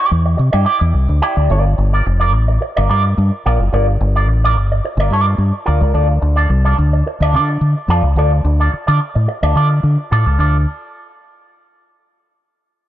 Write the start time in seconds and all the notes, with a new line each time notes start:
Already playing: D5
0.00 G4
0.11 E2, muted clean electric guitar stroke
0.25 muted clean electric guitar stroke
0.37 C3, muted clean electric guitar stroke
0.52 G2 E4 G4 D5
0.65 E4 G4 D5
0.80 E2, muted clean electric guitar stroke
0.94 C2, muted clean electric guitar stroke
1.09 D2, muted clean electric guitar stroke
1.22 E4 G4 D5
1.37 D2 E4 G4 D5
1.50 G1 F4 A#4 D5
1.65 muted clean electric guitar stroke
1.78 G1, muted clean electric guitar stroke
1.93 F4 A#4 D5
2.06 F1, muted clean electric guitar stroke
2.20 F4 A#4 D5
2.33 A1, muted clean electric guitar stroke
2.48 muted clean electric guitar stroke
2.61 muted clean electric guitar stroke
2.76 G1 F4 A#4 D5
2.89 G2 F4 A#4 D5
3.04 muted clean electric guitar stroke
3.18 G2
3.32 muted clean electric guitar stroke
3.46 A#1 F4 A#4 D5
3.59 F#1, muted clean electric guitar stroke
3.73 G1 F4 A#4 D5
3.88 muted clean electric guitar stroke
4.01 G1, muted clean electric guitar stroke
4.15 F4 A#4 D5
4.28 A1, muted clean electric guitar stroke
4.44 F4 A#4 D5
4.56 G1, muted clean electric guitar stroke
4.72 muted clean electric guitar stroke
4.85 muted clean electric guitar stroke
4.97 G1 F4 A#4 D5
5.11 G2 F4 A#4 D5
5.27 muted clean electric guitar stroke
5.38 G2, muted clean electric guitar stroke
5.53 muted clean electric guitar stroke
5.66 D2 F4 A#4 D5
5.80 C#2 F4 A#4 D5
5.94 D2 F4 A4 D5
6.09 muted clean electric guitar stroke
6.21 D2, muted clean electric guitar stroke
6.36 F4 A4 D5
6.49 C2, muted clean electric guitar stroke
6.65 F4 A4 D5
6.78 D2, muted clean electric guitar stroke
6.93 muted clean electric guitar stroke
7.06 muted clean electric guitar stroke
7.21 D2 F4 A4 D5
7.33 D3 F4 A4 D5
7.50 muted clean electric guitar stroke
7.61 D3
7.77 muted clean electric guitar stroke
7.88 F2 F4 A4 D5
8.03 C#2, muted clean electric guitar stroke
8.16 D2 F4 A4 D5
8.33 muted clean electric guitar stroke
8.45 D2, muted clean electric guitar stroke
8.60 F4 A4 D5
8.72 muted clean electric guitar stroke, muted fingered electric bass stroke
8.87 D3 F4 A4 D5
9.01 muted clean electric guitar stroke
9.15 A2, muted clean electric guitar stroke
9.28 muted clean electric guitar stroke
9.43 D2 F4 A4 D5
9.56 D3 F4 A4 D5
9.70 muted clean electric guitar stroke
9.82 D3, muted clean electric guitar stroke
9.98 muted clean electric guitar stroke
10.11 A2 F4 A4 D5
10.26 C#2 F4 A4 D5
10.39 D2 F4 A4 D5